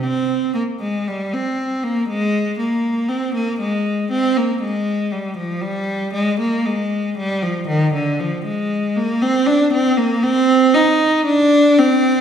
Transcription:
X:1
M:4/4
L:1/16
Q:1/4=59
K:Cm
V:1 name="Cello"
C2 B, A, G, C2 B, A,2 B,2 C B, A,2 | C B, A,2 G, F, G,2 A, B, A,2 G, F, E, D, | F, A,2 B, C D C B, C2 E2 D2 C2 |]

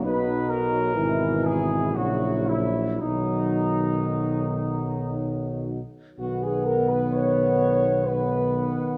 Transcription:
X:1
M:3/4
L:1/16
Q:1/4=61
K:B
V:1 name="Trumpet section"
B2 A4 G2 F2 E2 | D8 z4 | f8 f4 |]
V:2 name="French horn section"
D4 E4 E4 | D8- D2 z2 | F G A B c4 B4 |]
V:3 name="Trombone section" clef=bass
F,4 E,4 F,4 | F,8- F,2 z2 | B,8 B,4 |]
V:4 name="Trombone" clef=bass
B,,4 B,,4 C,2 z2 | D,8- D,2 z2 | D,8 D,4 |]
V:5 name="Tuba" clef=bass
B,,,4 G,,,4 A,,,4 | B,,,8- B,,,2 z2 | B,,,12 |]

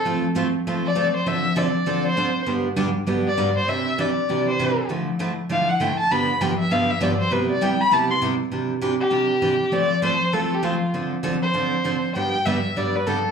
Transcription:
X:1
M:4/4
L:1/16
Q:"Swing" 1/4=198
K:C
V:1 name="Fiddle"
A2 z8 d4 c2 | e4 d6 c6 | z8 z2 d4 c2 | e4 d6 c6 |
z8 f2 ^f2 g2 a2 | b4 g2 e2 f2 e2 d2 c2 | B2 d2 g2 b2 a2 c'2 z4 | z6 G8- G2 |
d4 c4 A2 G2 F3 z | z6 c8- c2 | g4 e4 d2 B2 A3 z |]
V:2 name="Steel-string acoustic guitar"
[F,A,CFA]2 z2 [F,A,CFA]2 z2 [F,A,CFA]2 z2 [F,A,CFA]2 z2 | [D,F,CDA]2 z2 [D,F,CDA]2 z2 [D,F,CDA]2 z2 [D,F,CDA]2 z2 | [G,,D,G,B,DG]2 z2 [G,,D,G,B,DG]2 z2 [G,,D,G,B,DG]2 z2 [G,,D,G,B,DG]2 z2 | [C,E,DG]2 z2 [C,E,DG]2 z2 [C,E,DG]2 z2 [C,E,DG]2 z2 |
[D,F,A,E]2 z2 [D,F,A,E]2 z2 [D,F,A,E]2 z2 [D,F,A,E]2 z2 | [G,,D,F,B,DG]2 z2 [G,,D,F,B,DG]2 z2 [G,,D,F,B,DG]2 z2 [G,,D,F,B,DG]2 z2 | [C,G,B,EG]2 z2 [C,G,B,EG]2 z2 [C,G,B,EG]2 z2 [C,G,B,EG]2 z2 | [C,E,DG]2 z2 [C,E,DG]2 z2 [C,E,DG]2 z2 [C,E,DG]2 z2 |
[F,A,CFA]2 z2 [F,A,CFA]2 z2 [F,A,CFA]2 z2 [F,A,CFA]2 z2 | [D,F,CDA]2 z2 [D,F,CDA]2 z2 [D,F,CDA]2 z2 [D,F,CDA]2 z2 | [G,,D,G,B,DG]2 z2 [G,,D,G,B,DG]2 z2 [G,,D,G,B,DG]2 z2 [G,,D,G,B,DG]2 z2 |]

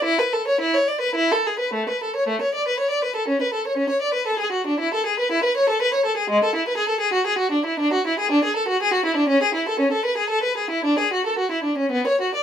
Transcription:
X:1
M:3/4
L:1/16
Q:1/4=118
K:A
V:1 name="Violin"
E B A c E c d B E A G B | A, B A c A, c d B c d B A | C B A c C c d B A G F D | E A G B E B c A B c A G |
G, A E B G A G F G F D E | D F E G D G A F G F E D | C G E A C A B G A B G E | D G F A F E D C B, c F d |]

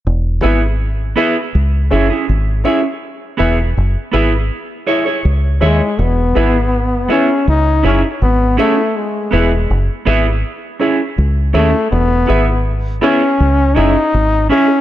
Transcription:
X:1
M:4/4
L:1/16
Q:1/4=81
K:E
V:1 name="Upright piano"
z2 [EGBe]2 z2 [EGBe]2 z2 [EGce]2 z2 [EGce]2 | z2 [EGBe]2 z2 [EGBe]2 z2 [EGce]2 z2 [EGce]2 | z2 [EGBe]2 z2 [EGBe]2 z2 [EGce]2 z2 [EGce]2 | z2 [EGBe]2 z2 [EGBe]2 z2 [EGce]2 z2 [EGce]2 |
z2 [EGBe]2 z2 [EGBe]2 z2 [EGce]2 z2 [EGce]2 |]
V:2 name="Clean electric guitar"
z2 [B,EG] z3 [B,EG] z3 [CEG] [CEG] z2 [CEG] z | z2 [B,EG] z3 [B,EG] z3 [EGc] [EGc] z2 [EGc] z | z2 [B,EG] z3 [B,EG] z3 [CEG] z3 [CEG] z | z2 [B,EG] z3 [B,EG] z3 [CEG] z3 [CEG] z |
z2 [B,EG] z3 [B,EG] z3 [CEG] z3 [CEG] z |]
V:3 name="Trombone"
z16 | z12 z2 G,2 | B,6 C2 D2 C2 B,2 A,2 | G,4 z8 z2 A,2 |
B,4 z2 C4 D4 C2 |]
V:4 name="Fingered electric bass" clef=bass
E,,,2 G,,,4 z2 C,,2 F,,, z G,,,2 z2 | z2 E,,,2 F,,, z G,,,2 z4 C,,2 D,, z | E,,,2 G,,,4 z2 C,,2 F,,, z G,,,2 z2 | z2 E,,,2 F,,, z G,,,2 z4 C,,2 D,, z |
E,,,2 G,,,4 z2 C,,2 F,,, z G,,,2 z2 |]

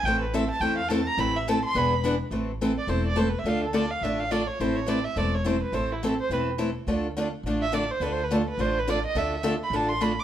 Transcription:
X:1
M:4/4
L:1/8
Q:"Swing" 1/4=211
K:Am
V:1 name="Violin"
g B e a g f a _b | b e a c' b2 z2 | z3 d c d (3c B e | f A d f e f d ^c |
c ^c d e d c =c B | c E A c B z3 | z4 z e d c | (3B c B A B c B d ^d |
e2 z b a c' b d' |]
V:2 name="Steel-string acoustic guitar"
[E,A,CEA] z [E,A,CEA] z [E,A,CEA] z [E,A,CEA] z | [E,A,CEA] z [E,A,CEA] z [E,B,D^G] z [E,B,DG] z | [E,A,CEA] z [E,A,CEA] z [E,A,CEA] z [E,A,CEA] z | [D,A,DFA] z [D,A,DFA] z [D,A,DFA] z [D,A,DFA] z |
[E,A,CEA] z [E,A,CEA] z [E,A,CEA] z [E,A,CEA] z | [E,A,CEA] z [E,A,CEA] z [E,A,CEA] z [E,A,CEA] z | [D,A,DFA] z [D,A,DFA] z [D,A,DFA] z [D,A,DFA] z | [D,A,DFA] z [D,A,DFA] z [D,A,DFA] z [D,A,DFA] z |
[D,A,DFA] z [D,A,DFA] z [D,A,DFA] z [D,A,DFA] z |]
V:3 name="Upright bass" clef=bass
A,,,4 E,,4 | A,,,4 E,,,4 | A,,,4 E,,,4 | D,,4 A,,,4 |
A,,,4 E,,,4 | A,,,4 E,,,4 | D,,4 A,,,4 | D,,4 A,,,4 |
D,,4 A,,,4 |]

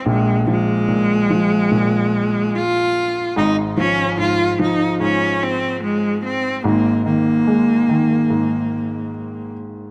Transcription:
X:1
M:4/4
L:1/8
Q:1/4=73
K:Bbm
V:1 name="Cello"
A, A,4- A, F2 | E D F E D C A, C | B, B,6 z |]
V:2 name="Upright piano" clef=bass
[B,,,B,,] F, B,, F, B,,4 | [A,,,A,,] F, A,, F, A,,4 | [A,,,A,,] E, A, E, A,,4 |]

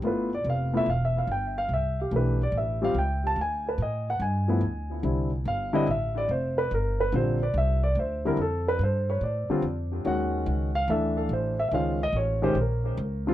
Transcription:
X:1
M:4/4
L:1/16
Q:"Swing" 1/4=144
K:Gmix
V:1 name="Grand piano"
B2 d2 f2 e2 (3f2 e2 f2 g2 f2 | e2 G2 B2 d2 e2 ^e2 g2 a2 | _a2 B2 _e2 ^f2 a6- a z | z4 f2 _e2 =e2 d2 c2 B2 |
_B2 =B2 c2 d2 e2 d2 c2 _B2 | A2 B2 c2 _d2 =d4 z4 | _g6 f2 e2 A2 c2 e2 | [ef]2 _e2 _d2 c2 _B6 z2 |]
V:2 name="Grand piano"
[A,B,EF]2 z4 [A,B,EF]2 z8 | z4 [E,A,DG]2 z4 [G,^B,^EG]2 z4 | z8 z2 [F,A,B,E]2 z4 | [D,G,CE]2 z4 [D,G,CE]2 z8 |
z4 [D,G,CF]2 z8 [D,G,CE]2 | z8 z2 [D,G,CF]2 z4 | [_E,_A,_D_G]6 z2 [=E,=A,=DA]6 z2 | [_E,_A,_DF]2 z4 [E,A,DG]2 z6 [=D,G,CF]2 |]
V:3 name="Upright bass" clef=bass
G,,,4 F,,,4 E,,,4 G,,,4 | C,,4 B,,,4 A,,,4 ^C,,4 | D,,4 A,,4 G,,4 D,,4 | C,,4 G,,,4 A,,,4 F,,,4 |
G,,,4 _B,,,4 C,,4 D,,4 | F,,4 G,,4 A,,2 z2 F,,4 | _E,,4 _D,,4 =D,,4 A,,,4 | _D,,4 A,,,4 _B,,,4 D,,4 |]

